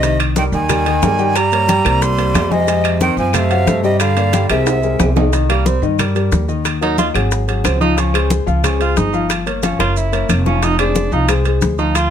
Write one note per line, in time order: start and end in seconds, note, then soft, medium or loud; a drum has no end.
0.00 0.47 C2 medium
0.00 0.18 C3 medium
0.00 0.30 D#3 medium
0.00 0.30 D#4 medium
0.00 0.18 D#5 medium
0.00 0.30 D#5 medium
0.00 high bongo medium
0.00 high conga soft
0.00 high timbale medium
0.00 maracas medium
0.20 high conga soft
0.20 high timbale loud
0.20 claves medium
0.20 maracas soft
0.36 0.44 D#3 medium
0.36 0.63 G3 medium
0.36 0.63 G4 medium
0.36 0.64 A#4 medium
0.36 0.44 G5 medium
0.36 high bongo medium
0.36 high conga loud
0.36 maracas medium
0.52 0.99 D#2 medium
0.52 1.38 D#3 medium
0.52 1.38 G#5 loud
0.52 high conga soft
0.52 maracas soft
0.69 0.83 G3 medium
0.69 0.83 G4 medium
0.69 0.83 A#4 medium
0.69 high bongo medium
0.69 high conga soft
0.69 low conga medium
0.69 high timbale loud
0.69 claves medium
0.69 maracas medium
0.86 1.00 D#3 medium
0.86 1.00 D#4 medium
0.86 1.00 D#5 medium
0.86 high conga soft
0.86 high timbale medium
0.86 maracas soft
1.02 1.79 G2 medium
1.02 1.16 G3 medium
1.02 1.16 G4 medium
1.02 1.17 A#4 medium
1.02 high bongo medium
1.02 low bongo medium
1.02 high conga medium
1.02 low timbale medium
1.02 maracas medium
1.19 1.46 G3 medium
1.19 1.46 G4 medium
1.19 1.46 G5 medium
1.19 high conga soft
1.19 maracas soft
1.35 2.02 G3 loud
1.35 2.04 A#5 loud
1.35 high bongo medium
1.35 high conga soft
1.35 high timbale medium
1.35 claves medium
1.35 maracas medium
1.52 1.66 A#3 medium
1.52 1.66 A#4 medium
1.52 1.66 C#5 medium
1.52 high conga soft
1.52 high timbale medium
1.52 maracas soft
1.68 1.82 G3 medium
1.68 1.82 G4 medium
1.68 1.82 G5 medium
1.68 high bongo medium
1.68 high conga loud
1.68 high timbale medium
1.68 maracas medium
1.84 2.31 C2 loud
1.84 2.12 A#3 medium
1.84 2.12 A#4 medium
1.84 2.12 C5 medium
1.84 high bongo soft
1.84 high conga soft
1.84 high timbale loud
1.84 claves medium
1.84 maracas soft
2.02 2.54 G3 loud
2.02 2.53 C6 loud
2.02 high bongo medium
2.02 high conga soft
2.02 maracas medium
2.18 2.45 A#3 medium
2.18 2.45 A#4 medium
2.18 2.46 C5 medium
2.18 high bongo soft
2.18 high conga soft
2.18 high timbale medium
2.18 maracas soft
2.34 3.12 F2 medium
2.34 high bongo medium
2.34 low bongo medium
2.34 high conga medium
2.34 high timbale medium
2.34 low timbale medium
2.34 claves medium
2.34 maracas medium
2.51 3.01 C3 medium
2.51 2.65 G#3 medium
2.51 2.65 G#4 medium
2.51 3.01 D#5 loud
2.51 2.65 G#5 loud
2.51 high bongo soft
2.51 high conga medium
2.51 maracas soft
2.67 2.95 G#3 medium
2.67 2.95 G#4 medium
2.67 2.95 G#5 medium
2.67 high bongo medium
2.67 high conga soft
2.67 high timbale medium
2.67 maracas medium
2.84 high conga soft
2.84 high timbale loud
2.84 claves medium
2.84 maracas soft
3.01 3.17 D#3 medium
3.01 3.28 C4 medium
3.01 3.28 C5 medium
3.01 3.28 D#5 medium
3.01 3.17 G5 loud
3.01 high bongo medium
3.01 high conga medium
3.01 maracas medium
3.17 3.63 F#2 medium
3.17 3.37 F3 medium
3.17 3.36 G#5 loud
3.17 high conga soft
3.17 maracas soft
3.33 3.84 C3 medium
3.33 3.47 A3 medium
3.33 3.48 A4 medium
3.33 3.48 C5 medium
3.33 3.83 F5 loud
3.33 high bongo medium
3.33 high conga soft
3.33 low conga medium
3.33 high timbale loud
3.33 claves medium
3.33 maracas medium
3.50 3.64 F#3 medium
3.50 3.64 F#4 medium
3.50 3.64 F#5 medium
3.50 high conga soft
3.50 high timbale medium
3.50 maracas soft
3.67 4.44 G2 medium
3.67 3.81 A3 medium
3.67 3.81 A4 medium
3.67 3.81 C5 medium
3.67 high bongo medium
3.67 low bongo medium
3.67 high conga medium
3.67 maracas medium
3.83 3.99 C3 medium
3.83 4.11 G3 medium
3.83 4.11 G4 medium
3.83 3.99 D#5 medium
3.83 4.11 G5 medium
3.83 high conga soft
3.83 maracas soft
4.00 4.47 D3 medium
4.00 4.46 F5 medium
4.00 high bongo medium
4.00 high conga soft
4.00 high timbale medium
4.00 claves medium
4.00 maracas medium
4.16 4.30 A#3 medium
4.16 4.30 A#4 medium
4.16 4.31 D5 medium
4.16 high conga soft
4.16 high timbale medium
4.16 maracas soft
4.33 4.47 G3 medium
4.33 4.47 G4 medium
4.33 4.47 G5 medium
4.33 high bongo medium
4.33 high conga loud
4.33 high timbale medium
4.33 maracas medium
4.50 4.96 C2 medium
4.50 5.12 C3 medium
4.50 4.77 G#3 medium
4.50 4.77 G#4 medium
4.50 4.77 A#4 medium
4.50 5.12 E5 medium
4.50 high bongo soft
4.50 high conga soft
4.50 high timbale loud
4.50 claves medium
4.50 maracas soft
4.67 high bongo medium
4.67 high conga soft
4.67 high timbale medium
4.67 maracas medium
4.83 5.10 G#3 medium
4.83 5.10 G#4 medium
4.83 5.10 A#4 medium
4.83 high bongo soft
4.83 high conga soft
4.83 maracas soft
4.99 5.77 C2 medium
4.99 high bongo medium
4.99 low bongo medium
4.99 high conga medium
4.99 low timbale medium
4.99 claves medium
4.99 maracas medium
5.16 5.30 D#3 medium
5.16 5.30 D#4 medium
5.16 5.30 D#5 medium
5.16 high bongo soft
5.16 high conga medium
5.16 low timbale loud
5.16 maracas soft
5.32 5.46 D#3 medium
5.32 5.46 D#4 medium
5.32 5.46 D#5 medium
5.32 high bongo medium
5.32 high conga soft
5.32 high timbale medium
5.32 maracas medium
5.49 5.76 G3 medium
5.49 5.68 A#3 medium
5.49 5.77 G4 medium
5.49 5.77 A#4 medium
5.49 high conga soft
5.49 high timbale medium
5.49 claves medium
5.49 maracas soft
5.66 5.83 C4 medium
5.66 high bongo medium
5.66 high conga medium
5.66 maracas medium
5.82 6.28 G2 medium
5.82 5.96 D#3 medium
5.82 5.96 D#4 medium
5.82 5.96 D#5 medium
5.82 high conga soft
5.82 maracas soft
5.99 6.12 G3 medium
5.99 6.13 G4 medium
5.99 6.13 A#4 medium
5.99 high bongo medium
5.99 high conga soft
5.99 low conga medium
5.99 high timbale medium
5.99 claves medium
5.99 maracas medium
6.15 6.42 G3 medium
6.15 6.43 G4 medium
6.15 6.43 A#4 medium
6.15 high conga soft
6.15 high timbale medium
6.15 maracas soft
6.32 7.09 D#2 medium
6.32 high bongo medium
6.32 low bongo medium
6.32 high conga medium
6.32 maracas medium
6.48 6.76 D#3 medium
6.48 6.76 D#4 medium
6.48 6.76 D#5 medium
6.48 high conga soft
6.48 maracas soft
6.65 high bongo medium
6.65 high conga soft
6.65 high timbale medium
6.65 claves medium
6.65 maracas medium
6.81 6.95 F#3 medium
6.81 6.98 D#4 medium
6.81 6.95 F#4 medium
6.81 6.95 A#4 medium
6.81 high conga soft
6.81 high timbale medium
6.81 maracas soft
6.98 7.12 D#3 medium
6.98 7.12 D#4 medium
6.98 7.08 F4 loud
6.98 7.12 D#5 medium
6.98 high bongo medium
6.98 high conga medium
6.98 high timbale medium
6.98 maracas medium
7.14 7.61 G#1 medium
7.14 7.42 F#3 medium
7.14 7.42 F#4 medium
7.14 7.42 G#4 medium
7.14 high bongo soft
7.14 high conga soft
7.14 high timbale medium
7.14 claves medium
7.14 maracas soft
7.31 high bongo medium
7.31 high conga soft
7.31 maracas medium
7.48 7.75 F#3 medium
7.48 7.75 F#4 medium
7.48 7.75 G#4 medium
7.48 high bongo soft
7.48 high conga soft
7.48 high timbale medium
7.48 maracas soft
7.64 8.42 C#2 medium
7.64 7.80 C4 medium
7.64 high bongo medium
7.64 low bongo medium
7.64 high conga medium
7.64 high timbale medium
7.64 claves medium
7.64 maracas medium
7.80 7.94 F3 medium
7.80 8.00 D#4 loud
7.80 7.94 F4 medium
7.80 7.95 F5 medium
7.80 high bongo soft
7.80 high conga medium
7.80 maracas soft
7.97 8.11 F3 medium
7.97 8.31 C#4 medium
7.97 8.11 F4 medium
7.97 8.11 F5 medium
7.97 high bongo medium
7.97 high timbale medium
7.97 maracas medium
8.13 8.41 G#3 medium
8.13 8.41 G#4 medium
8.13 8.41 C5 medium
8.13 high conga soft
8.13 high timbale loud
8.13 claves medium
8.13 maracas soft
8.30 high bongo medium
8.30 high conga medium
8.30 maracas medium
8.46 8.93 C#2 medium
8.46 8.60 F3 medium
8.46 8.61 F4 medium
8.46 8.61 F5 medium
8.46 high conga soft
8.46 maracas soft
8.63 8.77 G#3 medium
8.63 8.80 C#4 medium
8.63 8.77 G#4 medium
8.63 8.77 C5 medium
8.63 high bongo medium
8.63 high conga soft
8.63 low conga medium
8.63 high timbale loud
8.63 claves medium
8.63 maracas medium
8.79 9.07 G#3 medium
8.79 8.99 F4 loud
8.79 9.07 G#4 medium
8.79 9.07 C5 medium
8.79 high conga soft
8.79 high timbale medium
8.79 maracas soft
8.97 9.74 G1 medium
8.97 9.30 D#4 medium
8.97 high bongo medium
8.97 low bongo medium
8.97 high conga medium
8.97 maracas medium
9.13 9.40 F3 medium
9.13 9.41 F4 medium
9.13 9.41 F5 medium
9.13 high conga soft
9.13 maracas soft
9.30 high bongo medium
9.30 high conga soft
9.30 high timbale medium
9.30 claves medium
9.30 maracas medium
9.46 9.60 A#3 medium
9.46 9.60 A#4 medium
9.46 9.60 C#5 medium
9.46 high conga soft
9.46 high timbale medium
9.46 maracas soft
9.63 9.77 F3 medium
9.63 9.79 C#4 medium
9.63 9.77 F4 medium
9.63 9.77 F5 medium
9.63 high bongo medium
9.63 high conga loud
9.63 high timbale medium
9.63 maracas medium
9.79 10.26 F#1 medium
9.79 10.06 A#3 medium
9.79 9.98 F4 loud
9.79 10.07 A#4 medium
9.79 10.07 C#5 medium
9.79 high bongo medium
9.79 high conga soft
9.79 high timbale medium
9.79 claves medium
9.79 maracas soft
9.97 10.30 E4 medium
9.97 high conga soft
9.97 maracas medium
10.12 10.40 A#3 medium
10.12 10.40 A#4 medium
10.12 10.40 C#5 medium
10.12 high conga soft
10.12 high timbale medium
10.12 maracas soft
10.29 11.07 F1 medium
10.29 low bongo medium
10.29 high conga medium
10.29 high timbale loud
10.29 claves medium
10.29 maracas medium
10.45 10.59 F3 medium
10.45 10.64 C#4 loud
10.45 10.60 F4 medium
10.45 10.60 F5 medium
10.45 low bongo medium
10.45 high conga medium
10.45 maracas soft
10.62 10.76 F3 medium
10.62 10.78 D#4 loud
10.62 10.76 F4 medium
10.62 10.76 F5 medium
10.62 high bongo medium
10.62 high conga soft
10.62 high timbale medium
10.62 maracas medium
10.79 11.06 G#3 medium
10.79 11.10 D4 medium
10.79 11.07 G#4 medium
10.79 11.07 C5 medium
10.79 high conga soft
10.79 high timbale loud
10.79 claves medium
10.79 maracas soft
10.95 high bongo medium
10.95 high conga loud
10.95 maracas medium
11.12 11.58 C2 loud
11.12 11.26 F3 medium
11.12 11.28 D#4 loud
11.12 11.26 F4 medium
11.12 11.26 F5 medium
11.12 high conga soft
11.12 maracas soft
11.29 11.42 G#3 medium
11.29 11.43 G#4 medium
11.29 11.43 C5 medium
11.29 high bongo medium
11.29 high conga soft
11.29 low conga medium
11.29 high timbale loud
11.29 claves medium
11.29 maracas medium
11.45 11.73 G#3 medium
11.45 11.73 G#4 medium
11.45 11.73 C5 medium
11.45 high conga soft
11.45 high timbale medium
11.45 maracas soft
11.61 12.10 D2 medium
11.61 high bongo medium
11.61 low bongo medium
11.61 high conga medium
11.61 maracas medium
11.78 12.06 F3 medium
11.78 11.97 D#4 loud
11.78 12.06 F4 medium
11.78 12.06 F5 medium
11.78 high conga soft
11.78 maracas soft
11.95 12.10 F4 loud
11.95 high bongo medium
11.95 high conga soft
11.95 high timbale medium
11.95 claves medium
11.95 maracas medium